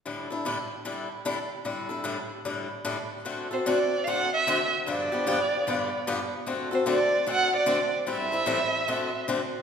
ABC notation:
X:1
M:4/4
L:1/16
Q:"Swing" 1/4=150
K:Dmix
V:1 name="Violin"
z16 | z16 | z2 c2 d3- d/2 =f/2 ^f2 e4 z2 | d12 z4 |
z2 c2 d4 f2 d4 z2 | e12 z4 |]
V:2 name="Steel-string acoustic guitar"
[A,,D,G,DEA]2 [G,DEA]2 [A,,D,G,DEA]2 z2 [A,,D,G,DEA]2 z2 [A,,D,G,DEA]2 z2 | [A,,D,G,DEA]2 [G,DEA]2 [A,,D,G,DEA]2 z2 [A,,D,G,DEA]2 z2 [A,,D,G,DEA]2 z2 | [D,A,CFA]2 [CFA]2 [D,A,CFA]2 z2 [D,A,CFA]2 z2 [D,A,CFA]2 z2 | [G,,D,=F,B,DG]2 [F,B,DG]2 [G,,D,F,B,DG]2 z2 [G,,D,F,B,DG]2 z2 [G,,D,F,B,DG]2 z2 |
[D,A,CFA]2 [CFA]2 [D,A,CFA]2 z2 [D,A,CFA]2 z2 [D,A,CFA]2 z2 | [A,,E,G,CEA]2 [G,CEA]2 [A,,E,G,CEA]2 z2 [D,A,CFA]2 z2 [D,A,CFA]2 z2 |]